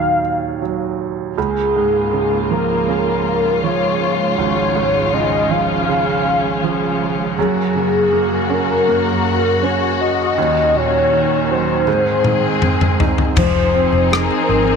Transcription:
Already playing: grand piano D#2 A#2 D#3 F#3, soft synth lead F5
0.62 grand piano F#3
1.37 string section C#2 C#3 A#3 F4, grand piano C#2, soft synth lead G#4
1.76 grand piano G#2
2.13 grand piano C#3
2.51 grand piano F3, soft synth lead A#4
2.88 grand piano C#3
3.63 grand piano F3, soft synth lead C#5
4.38 grand piano G#1, string section C#4, soft synth lead C#5
4.76 grand piano G#2
5.13 grand piano C#3, soft synth lead D#5
5.50 grand piano F3, soft synth lead F5
5.89 grand piano C#3
6.64 grand piano F3
7.38 string section F#2 A#3 F#4, grand piano F#2, soft synth lead G#4
7.75 grand piano C#3
8.13 grand piano A#3
8.50 grand piano C#4, soft synth lead A#4
8.88 grand piano A#3
9.63 grand piano C#4, soft synth lead C#5
10.01 soft synth lead D#5
10.38 grand piano D#2, string section D#2 D#3 C#4
10.75 grand piano A#2, soft synth lead C#5
11.13 grand piano D#3
11.51 grand piano F#3, soft synth lead C5
11.87 grand piano G#2, string section G#2 C4 G#4, high tom
12.24 grand piano D#3, mid tom
12.62 grand piano C4, mid tom
12.81 mid tom
13.00 grand piano D#4, floor tom
13.18 floor tom
13.36 fingered electric bass F1, steel-string acoustic guitar F3 C5, string section F3 C4 D#4 G#4, grand piano F3, soft synth lead C5, kick, floor tom, crash
13.56 steel-string acoustic guitar D#4
13.74 grand piano C4, steel-string acoustic guitar F4
13.92 fingered electric bass F1, steel-string acoustic guitar C5
14.11 steel-string acoustic guitar F4, grand piano G#4, soft synth lead A#4, cross-stick
14.30 steel-string acoustic guitar D#4
14.49 fingered electric bass G#1, grand piano C4, steel-string acoustic guitar F4
14.67 steel-string acoustic guitar D#4

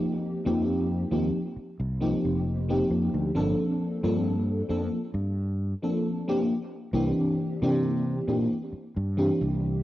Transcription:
Already playing: fm electric piano F3 A#3 C4 D#4 G4
0.45 fretless electric bass F2, fm electric piano F3 A#3 C4 D#4 G4
1.11 fretless electric bass D#2, fm electric piano F3 A#3 C4 D#4 G4
1.56 muted fretless electric bass stroke
1.80 fretless electric bass C2
2.00 fm electric piano F3 A#3 C4 D#4 G4
2.25 fretless electric bass F1
2.68 fm electric piano F3 A#3 C4 D#4 G4
2.90 fretless electric bass F2
3.14 fretless electric bass D2
3.35 fretless electric bass G1, fm electric piano F3 A#3 C4 D4 A4
4.03 fretless electric bass G2, fm electric piano F3 A#3 C4 D4 A4
4.69 fretless electric bass F2, fm electric piano F3 A#3 C4 D4 A4
5.14 fretless electric bass G2
5.82 fm electric piano F3 A#3 C4 D4 A4
6.28 fm electric piano F3 A#3 C4 D4 G4
6.93 fretless electric bass C2, fm electric piano E3 A#3 C4 D4 G4
7.62 fretless electric bass C3, fm electric piano E3 A#3 C4 D4 G4
8.27 fretless electric bass A#2, fm electric piano E3 A#3 C4 D4 G4
8.72 muted fretless electric bass stroke
8.96 fretless electric bass G2
9.17 fm electric piano E3 A#3 C4 D4 G4
9.41 fretless electric bass C2

